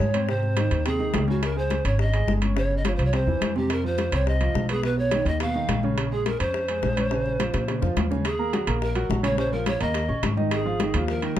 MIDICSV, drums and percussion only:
0, 0, Header, 1, 2, 480
1, 0, Start_track
1, 0, Key_signature, -5, "minor"
1, 0, Tempo, 284225
1, 478, Time_signature, 4, 2, 24, 8
1, 13926, Key_signature, -6, "minor"
1, 19244, End_track
2, 0, Start_track
2, 0, Title_t, "Drums"
2, 0, Note_on_c, 9, 60, 65
2, 0, Note_on_c, 9, 61, 79
2, 4, Note_on_c, 9, 63, 79
2, 164, Note_off_c, 9, 60, 0
2, 164, Note_off_c, 9, 61, 0
2, 173, Note_off_c, 9, 63, 0
2, 238, Note_on_c, 9, 63, 77
2, 238, Note_on_c, 9, 65, 79
2, 407, Note_off_c, 9, 63, 0
2, 407, Note_off_c, 9, 65, 0
2, 483, Note_on_c, 9, 60, 64
2, 652, Note_off_c, 9, 60, 0
2, 721, Note_on_c, 9, 63, 31
2, 725, Note_on_c, 9, 60, 31
2, 890, Note_off_c, 9, 63, 0
2, 894, Note_off_c, 9, 60, 0
2, 956, Note_on_c, 9, 65, 90
2, 960, Note_on_c, 9, 63, 90
2, 964, Note_on_c, 9, 60, 53
2, 1125, Note_off_c, 9, 65, 0
2, 1128, Note_off_c, 9, 63, 0
2, 1133, Note_off_c, 9, 60, 0
2, 1201, Note_on_c, 9, 63, 33
2, 1203, Note_on_c, 9, 65, 68
2, 1207, Note_on_c, 9, 60, 35
2, 1370, Note_off_c, 9, 63, 0
2, 1371, Note_off_c, 9, 65, 0
2, 1376, Note_off_c, 9, 60, 0
2, 1437, Note_on_c, 9, 63, 34
2, 1446, Note_on_c, 9, 65, 65
2, 1447, Note_on_c, 9, 60, 64
2, 1606, Note_off_c, 9, 63, 0
2, 1615, Note_off_c, 9, 65, 0
2, 1616, Note_off_c, 9, 60, 0
2, 1675, Note_on_c, 9, 63, 32
2, 1688, Note_on_c, 9, 60, 34
2, 1844, Note_off_c, 9, 63, 0
2, 1857, Note_off_c, 9, 60, 0
2, 1917, Note_on_c, 9, 63, 77
2, 1920, Note_on_c, 9, 60, 68
2, 1920, Note_on_c, 9, 61, 76
2, 1930, Note_on_c, 9, 65, 83
2, 1930, Note_on_c, 9, 66, 67
2, 2086, Note_off_c, 9, 63, 0
2, 2089, Note_off_c, 9, 60, 0
2, 2089, Note_off_c, 9, 61, 0
2, 2099, Note_off_c, 9, 65, 0
2, 2099, Note_off_c, 9, 66, 0
2, 2160, Note_on_c, 9, 63, 72
2, 2329, Note_off_c, 9, 63, 0
2, 2410, Note_on_c, 9, 65, 85
2, 2413, Note_on_c, 9, 60, 64
2, 2579, Note_off_c, 9, 65, 0
2, 2582, Note_off_c, 9, 60, 0
2, 2641, Note_on_c, 9, 63, 30
2, 2810, Note_off_c, 9, 63, 0
2, 2877, Note_on_c, 9, 63, 92
2, 2886, Note_on_c, 9, 60, 56
2, 2887, Note_on_c, 9, 65, 67
2, 3046, Note_off_c, 9, 63, 0
2, 3055, Note_off_c, 9, 60, 0
2, 3056, Note_off_c, 9, 65, 0
2, 3125, Note_on_c, 9, 63, 33
2, 3125, Note_on_c, 9, 65, 83
2, 3294, Note_off_c, 9, 63, 0
2, 3294, Note_off_c, 9, 65, 0
2, 3363, Note_on_c, 9, 63, 33
2, 3364, Note_on_c, 9, 60, 63
2, 3531, Note_off_c, 9, 63, 0
2, 3533, Note_off_c, 9, 60, 0
2, 3604, Note_on_c, 9, 63, 32
2, 3606, Note_on_c, 9, 65, 68
2, 3773, Note_off_c, 9, 63, 0
2, 3775, Note_off_c, 9, 65, 0
2, 3844, Note_on_c, 9, 63, 78
2, 3855, Note_on_c, 9, 60, 65
2, 3855, Note_on_c, 9, 61, 84
2, 4013, Note_off_c, 9, 63, 0
2, 4024, Note_off_c, 9, 60, 0
2, 4024, Note_off_c, 9, 61, 0
2, 4084, Note_on_c, 9, 65, 77
2, 4088, Note_on_c, 9, 63, 77
2, 4253, Note_off_c, 9, 65, 0
2, 4257, Note_off_c, 9, 63, 0
2, 4333, Note_on_c, 9, 60, 68
2, 4502, Note_off_c, 9, 60, 0
2, 4567, Note_on_c, 9, 63, 31
2, 4577, Note_on_c, 9, 60, 32
2, 4736, Note_off_c, 9, 63, 0
2, 4746, Note_off_c, 9, 60, 0
2, 4807, Note_on_c, 9, 63, 96
2, 4812, Note_on_c, 9, 65, 90
2, 4818, Note_on_c, 9, 60, 55
2, 4976, Note_off_c, 9, 63, 0
2, 4980, Note_off_c, 9, 65, 0
2, 4987, Note_off_c, 9, 60, 0
2, 5047, Note_on_c, 9, 63, 32
2, 5052, Note_on_c, 9, 65, 64
2, 5063, Note_on_c, 9, 60, 32
2, 5216, Note_off_c, 9, 63, 0
2, 5220, Note_off_c, 9, 65, 0
2, 5231, Note_off_c, 9, 60, 0
2, 5285, Note_on_c, 9, 65, 61
2, 5288, Note_on_c, 9, 63, 33
2, 5296, Note_on_c, 9, 60, 63
2, 5454, Note_off_c, 9, 65, 0
2, 5457, Note_off_c, 9, 63, 0
2, 5464, Note_off_c, 9, 60, 0
2, 5525, Note_on_c, 9, 63, 32
2, 5543, Note_on_c, 9, 60, 31
2, 5694, Note_off_c, 9, 63, 0
2, 5712, Note_off_c, 9, 60, 0
2, 5768, Note_on_c, 9, 63, 78
2, 5771, Note_on_c, 9, 65, 90
2, 5773, Note_on_c, 9, 60, 68
2, 5773, Note_on_c, 9, 61, 79
2, 5937, Note_off_c, 9, 63, 0
2, 5940, Note_off_c, 9, 65, 0
2, 5942, Note_off_c, 9, 60, 0
2, 5942, Note_off_c, 9, 61, 0
2, 6008, Note_on_c, 9, 63, 79
2, 6177, Note_off_c, 9, 63, 0
2, 6248, Note_on_c, 9, 60, 66
2, 6248, Note_on_c, 9, 63, 30
2, 6249, Note_on_c, 9, 65, 82
2, 6417, Note_off_c, 9, 60, 0
2, 6417, Note_off_c, 9, 63, 0
2, 6418, Note_off_c, 9, 65, 0
2, 6483, Note_on_c, 9, 63, 30
2, 6652, Note_off_c, 9, 63, 0
2, 6718, Note_on_c, 9, 63, 85
2, 6729, Note_on_c, 9, 65, 68
2, 6731, Note_on_c, 9, 60, 58
2, 6887, Note_off_c, 9, 63, 0
2, 6898, Note_off_c, 9, 65, 0
2, 6900, Note_off_c, 9, 60, 0
2, 6964, Note_on_c, 9, 65, 92
2, 6966, Note_on_c, 9, 63, 31
2, 7133, Note_off_c, 9, 65, 0
2, 7135, Note_off_c, 9, 63, 0
2, 7206, Note_on_c, 9, 63, 33
2, 7211, Note_on_c, 9, 60, 60
2, 7374, Note_off_c, 9, 63, 0
2, 7380, Note_off_c, 9, 60, 0
2, 7443, Note_on_c, 9, 65, 65
2, 7446, Note_on_c, 9, 63, 32
2, 7612, Note_off_c, 9, 65, 0
2, 7615, Note_off_c, 9, 63, 0
2, 7688, Note_on_c, 9, 63, 72
2, 7690, Note_on_c, 9, 60, 68
2, 7690, Note_on_c, 9, 61, 81
2, 7857, Note_off_c, 9, 63, 0
2, 7859, Note_off_c, 9, 60, 0
2, 7859, Note_off_c, 9, 61, 0
2, 7922, Note_on_c, 9, 65, 83
2, 7928, Note_on_c, 9, 63, 76
2, 8091, Note_off_c, 9, 65, 0
2, 8097, Note_off_c, 9, 63, 0
2, 8165, Note_on_c, 9, 60, 64
2, 8165, Note_on_c, 9, 63, 30
2, 8334, Note_off_c, 9, 60, 0
2, 8334, Note_off_c, 9, 63, 0
2, 8402, Note_on_c, 9, 60, 31
2, 8408, Note_on_c, 9, 63, 31
2, 8571, Note_off_c, 9, 60, 0
2, 8577, Note_off_c, 9, 63, 0
2, 8636, Note_on_c, 9, 65, 87
2, 8638, Note_on_c, 9, 60, 58
2, 8645, Note_on_c, 9, 63, 89
2, 8805, Note_off_c, 9, 65, 0
2, 8807, Note_off_c, 9, 60, 0
2, 8814, Note_off_c, 9, 63, 0
2, 8882, Note_on_c, 9, 60, 35
2, 8887, Note_on_c, 9, 65, 67
2, 8889, Note_on_c, 9, 63, 32
2, 9051, Note_off_c, 9, 60, 0
2, 9056, Note_off_c, 9, 65, 0
2, 9058, Note_off_c, 9, 63, 0
2, 9123, Note_on_c, 9, 60, 68
2, 9127, Note_on_c, 9, 65, 62
2, 9132, Note_on_c, 9, 63, 35
2, 9292, Note_off_c, 9, 60, 0
2, 9296, Note_off_c, 9, 65, 0
2, 9301, Note_off_c, 9, 63, 0
2, 9362, Note_on_c, 9, 60, 34
2, 9368, Note_on_c, 9, 63, 34
2, 9531, Note_off_c, 9, 60, 0
2, 9537, Note_off_c, 9, 63, 0
2, 9605, Note_on_c, 9, 60, 71
2, 9605, Note_on_c, 9, 61, 87
2, 9607, Note_on_c, 9, 63, 77
2, 9610, Note_on_c, 9, 65, 87
2, 9774, Note_off_c, 9, 60, 0
2, 9774, Note_off_c, 9, 61, 0
2, 9775, Note_off_c, 9, 63, 0
2, 9779, Note_off_c, 9, 65, 0
2, 9849, Note_on_c, 9, 63, 76
2, 10018, Note_off_c, 9, 63, 0
2, 10092, Note_on_c, 9, 65, 90
2, 10093, Note_on_c, 9, 60, 67
2, 10261, Note_off_c, 9, 65, 0
2, 10262, Note_off_c, 9, 60, 0
2, 10328, Note_on_c, 9, 63, 32
2, 10497, Note_off_c, 9, 63, 0
2, 10570, Note_on_c, 9, 60, 60
2, 10570, Note_on_c, 9, 63, 87
2, 10573, Note_on_c, 9, 65, 68
2, 10739, Note_off_c, 9, 60, 0
2, 10739, Note_off_c, 9, 63, 0
2, 10742, Note_off_c, 9, 65, 0
2, 10807, Note_on_c, 9, 63, 33
2, 10812, Note_on_c, 9, 65, 88
2, 10976, Note_off_c, 9, 63, 0
2, 10980, Note_off_c, 9, 65, 0
2, 11047, Note_on_c, 9, 63, 34
2, 11048, Note_on_c, 9, 60, 64
2, 11216, Note_off_c, 9, 63, 0
2, 11217, Note_off_c, 9, 60, 0
2, 11288, Note_on_c, 9, 63, 34
2, 11289, Note_on_c, 9, 65, 71
2, 11457, Note_off_c, 9, 63, 0
2, 11458, Note_off_c, 9, 65, 0
2, 11525, Note_on_c, 9, 63, 75
2, 11532, Note_on_c, 9, 60, 68
2, 11532, Note_on_c, 9, 61, 81
2, 11694, Note_off_c, 9, 63, 0
2, 11701, Note_off_c, 9, 60, 0
2, 11701, Note_off_c, 9, 61, 0
2, 11766, Note_on_c, 9, 63, 75
2, 11775, Note_on_c, 9, 65, 84
2, 11935, Note_off_c, 9, 63, 0
2, 11944, Note_off_c, 9, 65, 0
2, 12008, Note_on_c, 9, 60, 67
2, 12177, Note_off_c, 9, 60, 0
2, 12252, Note_on_c, 9, 60, 32
2, 12252, Note_on_c, 9, 63, 33
2, 12420, Note_off_c, 9, 63, 0
2, 12421, Note_off_c, 9, 60, 0
2, 12492, Note_on_c, 9, 60, 60
2, 12495, Note_on_c, 9, 63, 88
2, 12496, Note_on_c, 9, 65, 88
2, 12661, Note_off_c, 9, 60, 0
2, 12663, Note_off_c, 9, 63, 0
2, 12665, Note_off_c, 9, 65, 0
2, 12729, Note_on_c, 9, 60, 88
2, 12730, Note_on_c, 9, 63, 33
2, 12735, Note_on_c, 9, 65, 66
2, 12898, Note_off_c, 9, 60, 0
2, 12899, Note_off_c, 9, 63, 0
2, 12904, Note_off_c, 9, 65, 0
2, 12971, Note_on_c, 9, 63, 34
2, 12974, Note_on_c, 9, 60, 74
2, 12977, Note_on_c, 9, 65, 63
2, 13140, Note_off_c, 9, 63, 0
2, 13143, Note_off_c, 9, 60, 0
2, 13146, Note_off_c, 9, 65, 0
2, 13213, Note_on_c, 9, 61, 96
2, 13217, Note_on_c, 9, 63, 34
2, 13382, Note_off_c, 9, 61, 0
2, 13386, Note_off_c, 9, 63, 0
2, 13455, Note_on_c, 9, 61, 95
2, 13459, Note_on_c, 9, 63, 77
2, 13460, Note_on_c, 9, 65, 91
2, 13460, Note_on_c, 9, 66, 69
2, 13624, Note_off_c, 9, 61, 0
2, 13628, Note_off_c, 9, 63, 0
2, 13628, Note_off_c, 9, 65, 0
2, 13628, Note_off_c, 9, 66, 0
2, 13698, Note_on_c, 9, 63, 76
2, 13706, Note_on_c, 9, 61, 78
2, 13867, Note_off_c, 9, 63, 0
2, 13875, Note_off_c, 9, 61, 0
2, 13930, Note_on_c, 9, 65, 88
2, 13940, Note_on_c, 9, 60, 68
2, 13940, Note_on_c, 9, 63, 30
2, 14099, Note_off_c, 9, 65, 0
2, 14109, Note_off_c, 9, 60, 0
2, 14109, Note_off_c, 9, 63, 0
2, 14174, Note_on_c, 9, 63, 32
2, 14343, Note_off_c, 9, 63, 0
2, 14411, Note_on_c, 9, 65, 69
2, 14415, Note_on_c, 9, 63, 94
2, 14420, Note_on_c, 9, 60, 58
2, 14580, Note_off_c, 9, 65, 0
2, 14583, Note_off_c, 9, 63, 0
2, 14589, Note_off_c, 9, 60, 0
2, 14648, Note_on_c, 9, 65, 95
2, 14652, Note_on_c, 9, 63, 34
2, 14652, Note_on_c, 9, 64, 84
2, 14817, Note_off_c, 9, 65, 0
2, 14821, Note_off_c, 9, 63, 0
2, 14821, Note_off_c, 9, 64, 0
2, 14895, Note_on_c, 9, 63, 37
2, 14896, Note_on_c, 9, 60, 64
2, 15064, Note_off_c, 9, 63, 0
2, 15065, Note_off_c, 9, 60, 0
2, 15122, Note_on_c, 9, 65, 70
2, 15130, Note_on_c, 9, 63, 35
2, 15291, Note_off_c, 9, 65, 0
2, 15299, Note_off_c, 9, 63, 0
2, 15363, Note_on_c, 9, 63, 83
2, 15379, Note_on_c, 9, 60, 72
2, 15379, Note_on_c, 9, 61, 84
2, 15532, Note_off_c, 9, 63, 0
2, 15548, Note_off_c, 9, 60, 0
2, 15548, Note_off_c, 9, 61, 0
2, 15602, Note_on_c, 9, 63, 82
2, 15605, Note_on_c, 9, 65, 82
2, 15771, Note_off_c, 9, 63, 0
2, 15774, Note_off_c, 9, 65, 0
2, 15841, Note_on_c, 9, 63, 32
2, 15845, Note_on_c, 9, 60, 67
2, 16010, Note_off_c, 9, 63, 0
2, 16014, Note_off_c, 9, 60, 0
2, 16083, Note_on_c, 9, 63, 34
2, 16094, Note_on_c, 9, 60, 34
2, 16252, Note_off_c, 9, 63, 0
2, 16262, Note_off_c, 9, 60, 0
2, 16315, Note_on_c, 9, 63, 92
2, 16319, Note_on_c, 9, 65, 90
2, 16337, Note_on_c, 9, 60, 56
2, 16484, Note_off_c, 9, 63, 0
2, 16488, Note_off_c, 9, 65, 0
2, 16506, Note_off_c, 9, 60, 0
2, 16557, Note_on_c, 9, 63, 35
2, 16560, Note_on_c, 9, 65, 70
2, 16574, Note_on_c, 9, 60, 36
2, 16726, Note_off_c, 9, 63, 0
2, 16729, Note_off_c, 9, 65, 0
2, 16743, Note_off_c, 9, 60, 0
2, 16793, Note_on_c, 9, 63, 37
2, 16793, Note_on_c, 9, 65, 72
2, 16804, Note_on_c, 9, 60, 66
2, 16962, Note_off_c, 9, 63, 0
2, 16962, Note_off_c, 9, 65, 0
2, 16972, Note_off_c, 9, 60, 0
2, 17036, Note_on_c, 9, 63, 35
2, 17045, Note_on_c, 9, 60, 32
2, 17205, Note_off_c, 9, 63, 0
2, 17213, Note_off_c, 9, 60, 0
2, 17276, Note_on_c, 9, 65, 94
2, 17277, Note_on_c, 9, 63, 81
2, 17283, Note_on_c, 9, 60, 73
2, 17283, Note_on_c, 9, 61, 85
2, 17445, Note_off_c, 9, 65, 0
2, 17446, Note_off_c, 9, 63, 0
2, 17452, Note_off_c, 9, 60, 0
2, 17452, Note_off_c, 9, 61, 0
2, 17518, Note_on_c, 9, 63, 81
2, 17687, Note_off_c, 9, 63, 0
2, 17755, Note_on_c, 9, 65, 90
2, 17757, Note_on_c, 9, 60, 69
2, 17761, Note_on_c, 9, 63, 35
2, 17924, Note_off_c, 9, 65, 0
2, 17926, Note_off_c, 9, 60, 0
2, 17930, Note_off_c, 9, 63, 0
2, 17994, Note_on_c, 9, 63, 35
2, 18163, Note_off_c, 9, 63, 0
2, 18236, Note_on_c, 9, 63, 94
2, 18237, Note_on_c, 9, 65, 75
2, 18238, Note_on_c, 9, 60, 59
2, 18404, Note_off_c, 9, 63, 0
2, 18406, Note_off_c, 9, 65, 0
2, 18407, Note_off_c, 9, 60, 0
2, 18474, Note_on_c, 9, 65, 93
2, 18475, Note_on_c, 9, 63, 33
2, 18475, Note_on_c, 9, 64, 81
2, 18643, Note_off_c, 9, 65, 0
2, 18644, Note_off_c, 9, 63, 0
2, 18644, Note_off_c, 9, 64, 0
2, 18718, Note_on_c, 9, 60, 70
2, 18721, Note_on_c, 9, 63, 35
2, 18887, Note_off_c, 9, 60, 0
2, 18890, Note_off_c, 9, 63, 0
2, 18955, Note_on_c, 9, 65, 69
2, 18957, Note_on_c, 9, 63, 34
2, 19124, Note_off_c, 9, 65, 0
2, 19126, Note_off_c, 9, 63, 0
2, 19244, End_track
0, 0, End_of_file